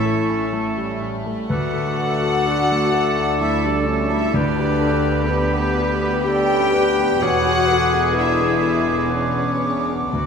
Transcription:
Already playing: A1 A2 A3 C#4 E4 A4 B4 C#5 E5 C#6
0.05 A4
0.29 C#4
0.53 A3
0.77 G3
1.02 C#4
1.26 A3
1.48 D2 D4 F#4 A4 B4 F#5 D6
1.73 A4
1.98 A4 B4
2.23 A4
2.46 D4 F#4
2.71 A3
2.94 A4
3.19 D4
3.41 A3 E4 E5
3.64 G3 D4 D5
3.86 C#4 D4 C#5
4.10 A3 E4 E5
4.34 D2 G3 B3 D4 G4 B4 D5 B5
4.58 G4
4.81 A4
5.04 G4
5.27 B3 D4 G4 B4
5.53 B3
5.78 G4
6.02 B4
6.26 D4 G4 A4 G5
6.53 C#4
6.74 D4 B4
6.99 B3
7.21 E1 E2 G#3 F#4 G#4 C#5 F#5 D6
7.47 G#4
7.67 B4
7.71 A4
7.93 G#4
8.15 D4 E4 G#4
8.19 E5
8.40 B3
8.62 A4 B4
8.90 B4
9.10 B3 C#4 D4 B4 C#5
9.39 C#4
9.58 G#4
9.63 D4
9.88 B3
10.08 D2 A3 D4 F#4
10.12 D2 D4 D5

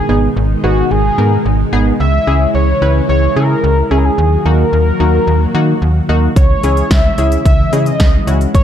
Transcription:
Already playing: B2 D#3 G#3 D#4 G#4
0.09 G#1 B3 D#4 G#4
0.36 G#1
0.64 G#1 B3 D#4 F#4 G#4
0.91 G#1 G#4
1.18 G#2 B3 D#4 A#4
1.45 G#1
1.73 G#1 B3 D#4 G#4
2.00 C#2 C#3 E3 E4 E5
2.27 C#2 C#4 E4 G#4
2.54 C#2 C#5
2.82 C#2 C#4 E4 B4
3.09 C#2 C#5
3.36 C#3 C#4 E4 G#4 A#4
3.64 C#2
3.91 C#2 C#4 E4 G#4
3.98 A#4
4.05 G#4
4.18 D#2 D#3 F#3 A#3 F#4
4.45 D#2 A#3 D#4 F#4 A#4
4.73 D#2
5.00 D#2 A#3 D#4 F#4
5.27 D#2
5.55 D#3 A#3 D#4 F#4
5.82 D#2
6.09 D#2 A#3 D#4 F#4
6.36 C#2 C#3 E3 G#3 E4 C#5, kick, closed hi-hat
6.63 C#2 C#4 E4 G#4, closed hi-hat
6.77 closed hi-hat
6.91 C#2 E5, kick, snare, closed hi-hat
7.18 C#2 C#4 E4 G#4, closed hi-hat
7.32 closed hi-hat
7.45 C#2 E5, kick, closed hi-hat
7.73 C#3 C#4 E4 G#4 D#5, closed hi-hat
7.80 E5
7.86 D#5, closed hi-hat
8.00 C#2, kick, snare, closed hi-hat
8.27 C#2 C#4 E4 F#4, closed hi-hat
8.41 closed hi-hat
8.54 G#1 B2 D#3 D#4 C#5, kick, closed hi-hat

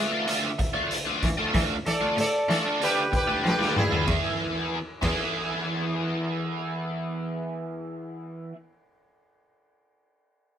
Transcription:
Already playing: D3 A3 D4 F4 E5
0.12 D3 A3 D4 F4
0.27 D3 A3 D4 F4, closed hi-hat
0.58 muted overdriven electric guitar stroke, kick, closed hi-hat
0.74 D3 A3 D4 F4
0.91 closed hi-hat
1.06 D3 A3 D4 F4
1.23 E3, kick, closed hi-hat
1.38 D3 A3 D4 F4
1.54 D3 E3 A3 D4 F4, kick, closed hi-hat
1.86 E3 A4 D5, closed hi-hat
2.01 D3 A3 D4 F4
2.17 A2 A4 D5, muted overdriven electric guitar stroke, closed hi-hat
2.49 D3 E3 A3 D4 F4 A4 D5, closed hi-hat
2.65 D3 A3 D4 F4
2.80 D3 A3 D4 F4 G4, closed hi-hat
2.84 B4
3.12 G4, muted overdriven electric guitar stroke, kick, closed hi-hat
3.16 B4
3.27 D3 A3 D4 F4
3.44 F3 G4, snare
3.48 B4
3.59 D3 A3 D4 F4, snare
3.76 E4 G#4, mid tom
3.91 D3 A3 D4 F4, floor tom
4.07 E2 E3 B3 E4, kick, ride
4.11 G#4
5.02 E2 E3 B3 E4 G#4, kick, ride

